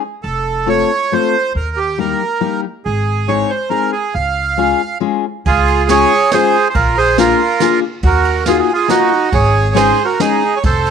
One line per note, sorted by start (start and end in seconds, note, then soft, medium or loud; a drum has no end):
0.23 0.81 F1 medium
0.23 0.69 A4 medium
0.66 0.90 A3 medium
0.66 0.90 C4 medium
0.66 0.90 F4 soft
0.66 0.90 A4 medium
0.66 1.14 C#5 medium
1.12 1.35 A3 soft
1.12 1.35 C4 soft
1.12 1.35 F4 soft
1.12 1.35 A4 medium
1.12 1.53 C5 medium
1.55 2.11 D#2 medium
1.55 1.79 A#4 medium
1.77 1.99 G4 medium
1.98 2.21 G3 medium
1.98 2.21 A#3 soft
1.98 2.21 D#4 soft
1.98 2.21 G4 medium
1.98 2.61 A#4 medium
2.41 2.64 G3 medium
2.41 2.64 A#3 soft
2.41 2.64 D#4 soft
2.41 2.64 G4 medium
2.85 3.41 G#1 medium
2.85 3.29 G#4 medium
3.28 3.50 G#3 medium
3.28 3.50 C4 soft
3.28 3.50 D#4 medium
3.28 3.51 G#4 medium
3.28 3.51 C#5 medium
3.50 3.69 C5 medium
3.70 3.93 G#3 soft
3.70 3.93 C4 soft
3.70 3.93 D#4 soft
3.70 3.93 G#4 medium
3.70 3.91 A#4 medium
3.92 4.14 G#4 medium
4.15 4.71 C#2 medium
4.15 4.98 F5 medium
4.57 4.80 G#3 medium
4.57 4.80 C#4 soft
4.57 4.81 F4 soft
4.57 4.81 G#4 medium
5.00 5.24 G#3 medium
5.00 5.24 C#4 medium
5.00 5.24 F4 medium
5.00 5.24 G#4 medium
5.46 6.03 C#2 medium
5.46 5.87 F4 medium
5.46 5.89 G#4 medium
5.46 kick medium
5.46 ride soft
5.68 ride soft
5.89 6.12 G#3 medium
5.89 6.12 C#4 medium
5.89 6.12 F4 medium
5.89 6.12 G#4 medium
5.89 6.31 G#4 medium
5.89 6.35 C#5 loud
5.89 snare medium
5.89 ride soft
6.32 6.55 G#3 medium
6.32 6.55 C#4 medium
6.32 6.56 F4 medium
6.32 6.68 G#4 medium
6.32 6.56 G#4 medium
6.32 6.68 C5 medium
6.32 snare medium
6.32 ride soft
6.70 6.75 C5 medium
6.75 7.31 A#1 medium
6.75 6.96 F4 medium
6.75 6.98 A#4 medium
6.75 kick medium
6.75 ride soft
6.98 7.17 G#4 medium
6.98 7.19 C5 medium
7.18 7.40 A#3 medium
7.18 7.41 D4 medium
7.18 7.41 F4 medium
7.18 7.80 F4 medium
7.18 7.41 G#4 medium
7.18 7.80 A#4 medium
7.18 snare medium
7.18 ride soft
7.60 7.83 A#3 medium
7.60 7.83 D4 soft
7.60 7.83 F4 medium
7.60 7.83 G#4 medium
7.60 snare medium
7.60 ride soft
8.03 8.59 D#2 medium
8.03 8.44 F#4 medium
8.03 kick medium
8.03 ride soft
8.07 8.49 A#4 medium
8.25 ride soft
8.46 8.69 A#3 medium
8.46 8.69 D#4 medium
8.46 8.60 F4 medium
8.46 8.69 F4 medium
8.46 8.69 F#4 medium
8.46 8.58 G#4 medium
8.46 snare medium
8.46 ride soft
8.59 8.73 G#4 medium
8.73 8.87 F4 medium
8.73 8.90 G#4 medium
8.88 9.11 A#3 medium
8.88 9.11 D#4 medium
8.88 9.29 D#4 medium
8.88 9.11 F4 medium
8.88 9.12 F#4 medium
8.88 9.34 F#4 medium
8.88 snare medium
8.88 ride soft
9.32 9.89 G#1 loud
9.32 9.73 G#4 medium
9.32 9.78 C#5 medium
9.32 kick medium
9.32 ride soft
9.74 9.98 G#3 medium
9.74 9.98 C#4 medium
9.74 9.98 D#4 medium
9.74 10.03 G#4 medium
9.74 9.98 G#4 medium
9.74 10.06 C5 medium
9.74 snare medium
9.74 ride soft
10.05 10.18 F#4 medium
10.05 10.20 A#4 medium
10.19 10.42 G#3 medium
10.19 10.42 C#4 soft
10.19 10.42 D#4 soft
10.19 10.55 D#4 medium
10.19 10.43 G#4 medium
10.19 10.58 G#4 medium
10.19 snare medium
10.19 ride soft
10.56 10.63 C#5 medium
10.63 10.90 F1 medium
10.63 10.90 A4 medium
10.63 10.90 C5 medium
10.63 kick medium
10.63 ride soft
10.86 ride soft